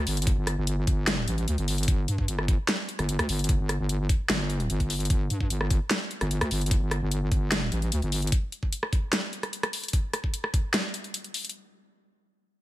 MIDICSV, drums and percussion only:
0, 0, Header, 1, 2, 480
1, 0, Start_track
1, 0, Tempo, 402685
1, 321, Time_signature, 4, 2, 24, 8
1, 15042, End_track
2, 0, Start_track
2, 0, Title_t, "Drums"
2, 80, Note_on_c, 9, 46, 104
2, 200, Note_off_c, 9, 46, 0
2, 204, Note_on_c, 9, 42, 56
2, 262, Note_off_c, 9, 42, 0
2, 262, Note_on_c, 9, 42, 72
2, 320, Note_on_c, 9, 36, 125
2, 321, Note_off_c, 9, 42, 0
2, 321, Note_on_c, 9, 42, 83
2, 440, Note_off_c, 9, 36, 0
2, 440, Note_off_c, 9, 42, 0
2, 560, Note_on_c, 9, 37, 60
2, 560, Note_on_c, 9, 42, 54
2, 680, Note_off_c, 9, 37, 0
2, 680, Note_off_c, 9, 42, 0
2, 801, Note_on_c, 9, 42, 87
2, 920, Note_off_c, 9, 42, 0
2, 1040, Note_on_c, 9, 36, 119
2, 1041, Note_on_c, 9, 42, 56
2, 1160, Note_off_c, 9, 36, 0
2, 1160, Note_off_c, 9, 42, 0
2, 1280, Note_on_c, 9, 38, 127
2, 1280, Note_on_c, 9, 42, 85
2, 1400, Note_off_c, 9, 38, 0
2, 1400, Note_off_c, 9, 42, 0
2, 1521, Note_on_c, 9, 42, 55
2, 1640, Note_off_c, 9, 42, 0
2, 1644, Note_on_c, 9, 42, 41
2, 1761, Note_off_c, 9, 42, 0
2, 1761, Note_on_c, 9, 42, 80
2, 1880, Note_off_c, 9, 42, 0
2, 1884, Note_on_c, 9, 42, 40
2, 2001, Note_on_c, 9, 46, 96
2, 2003, Note_off_c, 9, 42, 0
2, 2120, Note_off_c, 9, 46, 0
2, 2124, Note_on_c, 9, 42, 55
2, 2182, Note_off_c, 9, 42, 0
2, 2182, Note_on_c, 9, 42, 70
2, 2240, Note_off_c, 9, 42, 0
2, 2240, Note_on_c, 9, 36, 124
2, 2240, Note_on_c, 9, 42, 82
2, 2359, Note_off_c, 9, 36, 0
2, 2360, Note_off_c, 9, 42, 0
2, 2480, Note_on_c, 9, 42, 54
2, 2600, Note_off_c, 9, 42, 0
2, 2603, Note_on_c, 9, 36, 69
2, 2720, Note_on_c, 9, 42, 84
2, 2722, Note_off_c, 9, 36, 0
2, 2840, Note_off_c, 9, 42, 0
2, 2843, Note_on_c, 9, 37, 59
2, 2960, Note_on_c, 9, 36, 117
2, 2961, Note_on_c, 9, 42, 56
2, 2962, Note_off_c, 9, 37, 0
2, 3079, Note_off_c, 9, 36, 0
2, 3080, Note_off_c, 9, 42, 0
2, 3200, Note_on_c, 9, 38, 127
2, 3200, Note_on_c, 9, 42, 86
2, 3319, Note_off_c, 9, 38, 0
2, 3319, Note_off_c, 9, 42, 0
2, 3440, Note_on_c, 9, 42, 55
2, 3560, Note_off_c, 9, 42, 0
2, 3563, Note_on_c, 9, 37, 51
2, 3563, Note_on_c, 9, 42, 39
2, 3681, Note_off_c, 9, 42, 0
2, 3681, Note_on_c, 9, 42, 81
2, 3682, Note_off_c, 9, 37, 0
2, 3800, Note_off_c, 9, 42, 0
2, 3804, Note_on_c, 9, 37, 75
2, 3804, Note_on_c, 9, 42, 39
2, 3921, Note_on_c, 9, 46, 94
2, 3923, Note_off_c, 9, 37, 0
2, 3923, Note_off_c, 9, 42, 0
2, 4040, Note_off_c, 9, 46, 0
2, 4043, Note_on_c, 9, 42, 54
2, 4102, Note_off_c, 9, 42, 0
2, 4102, Note_on_c, 9, 42, 70
2, 4160, Note_on_c, 9, 36, 126
2, 4161, Note_off_c, 9, 42, 0
2, 4161, Note_on_c, 9, 42, 84
2, 4279, Note_off_c, 9, 36, 0
2, 4280, Note_off_c, 9, 42, 0
2, 4401, Note_on_c, 9, 37, 59
2, 4401, Note_on_c, 9, 42, 53
2, 4520, Note_off_c, 9, 37, 0
2, 4520, Note_off_c, 9, 42, 0
2, 4641, Note_on_c, 9, 42, 80
2, 4760, Note_off_c, 9, 42, 0
2, 4880, Note_on_c, 9, 36, 113
2, 4881, Note_on_c, 9, 42, 53
2, 4999, Note_off_c, 9, 36, 0
2, 5000, Note_off_c, 9, 42, 0
2, 5120, Note_on_c, 9, 38, 127
2, 5120, Note_on_c, 9, 42, 84
2, 5240, Note_off_c, 9, 38, 0
2, 5240, Note_off_c, 9, 42, 0
2, 5360, Note_on_c, 9, 42, 52
2, 5480, Note_off_c, 9, 42, 0
2, 5483, Note_on_c, 9, 42, 37
2, 5600, Note_off_c, 9, 42, 0
2, 5600, Note_on_c, 9, 42, 77
2, 5720, Note_off_c, 9, 42, 0
2, 5723, Note_on_c, 9, 36, 61
2, 5723, Note_on_c, 9, 42, 38
2, 5841, Note_on_c, 9, 46, 93
2, 5842, Note_off_c, 9, 36, 0
2, 5843, Note_off_c, 9, 42, 0
2, 5960, Note_off_c, 9, 46, 0
2, 5964, Note_on_c, 9, 42, 51
2, 6022, Note_off_c, 9, 42, 0
2, 6022, Note_on_c, 9, 42, 67
2, 6080, Note_off_c, 9, 42, 0
2, 6080, Note_on_c, 9, 36, 123
2, 6080, Note_on_c, 9, 42, 77
2, 6199, Note_off_c, 9, 36, 0
2, 6199, Note_off_c, 9, 42, 0
2, 6320, Note_on_c, 9, 42, 50
2, 6440, Note_off_c, 9, 42, 0
2, 6443, Note_on_c, 9, 36, 65
2, 6560, Note_on_c, 9, 42, 78
2, 6562, Note_off_c, 9, 36, 0
2, 6679, Note_off_c, 9, 42, 0
2, 6683, Note_on_c, 9, 37, 62
2, 6800, Note_on_c, 9, 36, 112
2, 6801, Note_on_c, 9, 42, 50
2, 6802, Note_off_c, 9, 37, 0
2, 6919, Note_off_c, 9, 36, 0
2, 6920, Note_off_c, 9, 42, 0
2, 7040, Note_on_c, 9, 38, 127
2, 7040, Note_on_c, 9, 42, 83
2, 7160, Note_off_c, 9, 38, 0
2, 7160, Note_off_c, 9, 42, 0
2, 7281, Note_on_c, 9, 42, 51
2, 7400, Note_off_c, 9, 42, 0
2, 7403, Note_on_c, 9, 37, 56
2, 7403, Note_on_c, 9, 42, 36
2, 7521, Note_off_c, 9, 42, 0
2, 7521, Note_on_c, 9, 42, 75
2, 7523, Note_off_c, 9, 37, 0
2, 7640, Note_off_c, 9, 42, 0
2, 7643, Note_on_c, 9, 37, 86
2, 7643, Note_on_c, 9, 42, 36
2, 7760, Note_on_c, 9, 46, 95
2, 7763, Note_off_c, 9, 37, 0
2, 7763, Note_off_c, 9, 42, 0
2, 7879, Note_off_c, 9, 46, 0
2, 7883, Note_on_c, 9, 42, 50
2, 7942, Note_off_c, 9, 42, 0
2, 7942, Note_on_c, 9, 42, 65
2, 8000, Note_on_c, 9, 36, 120
2, 8001, Note_off_c, 9, 42, 0
2, 8001, Note_on_c, 9, 42, 80
2, 8119, Note_off_c, 9, 36, 0
2, 8120, Note_off_c, 9, 42, 0
2, 8241, Note_on_c, 9, 37, 63
2, 8241, Note_on_c, 9, 42, 51
2, 8360, Note_off_c, 9, 37, 0
2, 8360, Note_off_c, 9, 42, 0
2, 8481, Note_on_c, 9, 42, 77
2, 8600, Note_off_c, 9, 42, 0
2, 8720, Note_on_c, 9, 36, 105
2, 8721, Note_on_c, 9, 42, 52
2, 8840, Note_off_c, 9, 36, 0
2, 8840, Note_off_c, 9, 42, 0
2, 8961, Note_on_c, 9, 38, 122
2, 8961, Note_on_c, 9, 42, 80
2, 9080, Note_off_c, 9, 38, 0
2, 9080, Note_off_c, 9, 42, 0
2, 9201, Note_on_c, 9, 42, 51
2, 9320, Note_off_c, 9, 42, 0
2, 9323, Note_on_c, 9, 42, 36
2, 9440, Note_off_c, 9, 42, 0
2, 9440, Note_on_c, 9, 42, 76
2, 9559, Note_off_c, 9, 42, 0
2, 9563, Note_on_c, 9, 42, 37
2, 9680, Note_on_c, 9, 46, 94
2, 9682, Note_off_c, 9, 42, 0
2, 9799, Note_off_c, 9, 46, 0
2, 9803, Note_on_c, 9, 42, 49
2, 9862, Note_off_c, 9, 42, 0
2, 9862, Note_on_c, 9, 42, 65
2, 9920, Note_off_c, 9, 42, 0
2, 9920, Note_on_c, 9, 36, 116
2, 9920, Note_on_c, 9, 42, 80
2, 10039, Note_off_c, 9, 36, 0
2, 10039, Note_off_c, 9, 42, 0
2, 10160, Note_on_c, 9, 42, 51
2, 10279, Note_off_c, 9, 42, 0
2, 10283, Note_on_c, 9, 36, 64
2, 10400, Note_on_c, 9, 42, 80
2, 10402, Note_off_c, 9, 36, 0
2, 10520, Note_off_c, 9, 42, 0
2, 10523, Note_on_c, 9, 37, 66
2, 10640, Note_on_c, 9, 36, 103
2, 10640, Note_on_c, 9, 42, 52
2, 10643, Note_off_c, 9, 37, 0
2, 10759, Note_off_c, 9, 36, 0
2, 10759, Note_off_c, 9, 42, 0
2, 10880, Note_on_c, 9, 38, 120
2, 10880, Note_on_c, 9, 42, 82
2, 10999, Note_off_c, 9, 38, 0
2, 10999, Note_off_c, 9, 42, 0
2, 11120, Note_on_c, 9, 42, 52
2, 11239, Note_off_c, 9, 42, 0
2, 11243, Note_on_c, 9, 37, 59
2, 11243, Note_on_c, 9, 42, 37
2, 11360, Note_off_c, 9, 42, 0
2, 11360, Note_on_c, 9, 42, 75
2, 11362, Note_off_c, 9, 37, 0
2, 11479, Note_off_c, 9, 42, 0
2, 11483, Note_on_c, 9, 37, 87
2, 11483, Note_on_c, 9, 42, 37
2, 11600, Note_on_c, 9, 46, 99
2, 11602, Note_off_c, 9, 37, 0
2, 11602, Note_off_c, 9, 42, 0
2, 11719, Note_off_c, 9, 46, 0
2, 11723, Note_on_c, 9, 42, 53
2, 11782, Note_off_c, 9, 42, 0
2, 11782, Note_on_c, 9, 42, 66
2, 11840, Note_off_c, 9, 42, 0
2, 11840, Note_on_c, 9, 36, 117
2, 11840, Note_on_c, 9, 42, 83
2, 11959, Note_off_c, 9, 36, 0
2, 11959, Note_off_c, 9, 42, 0
2, 12080, Note_on_c, 9, 37, 65
2, 12080, Note_on_c, 9, 42, 55
2, 12200, Note_off_c, 9, 37, 0
2, 12200, Note_off_c, 9, 42, 0
2, 12203, Note_on_c, 9, 36, 65
2, 12320, Note_on_c, 9, 42, 82
2, 12322, Note_off_c, 9, 36, 0
2, 12440, Note_off_c, 9, 42, 0
2, 12443, Note_on_c, 9, 37, 64
2, 12560, Note_on_c, 9, 36, 108
2, 12560, Note_on_c, 9, 42, 55
2, 12562, Note_off_c, 9, 37, 0
2, 12679, Note_off_c, 9, 36, 0
2, 12680, Note_off_c, 9, 42, 0
2, 12800, Note_on_c, 9, 38, 121
2, 12800, Note_on_c, 9, 42, 87
2, 12920, Note_off_c, 9, 38, 0
2, 12920, Note_off_c, 9, 42, 0
2, 13040, Note_on_c, 9, 42, 56
2, 13159, Note_off_c, 9, 42, 0
2, 13163, Note_on_c, 9, 42, 38
2, 13280, Note_off_c, 9, 42, 0
2, 13280, Note_on_c, 9, 42, 80
2, 13399, Note_off_c, 9, 42, 0
2, 13403, Note_on_c, 9, 42, 39
2, 13520, Note_on_c, 9, 46, 98
2, 13522, Note_off_c, 9, 42, 0
2, 13639, Note_off_c, 9, 46, 0
2, 13643, Note_on_c, 9, 42, 52
2, 13702, Note_off_c, 9, 42, 0
2, 13702, Note_on_c, 9, 42, 71
2, 13821, Note_off_c, 9, 42, 0
2, 15042, End_track
0, 0, End_of_file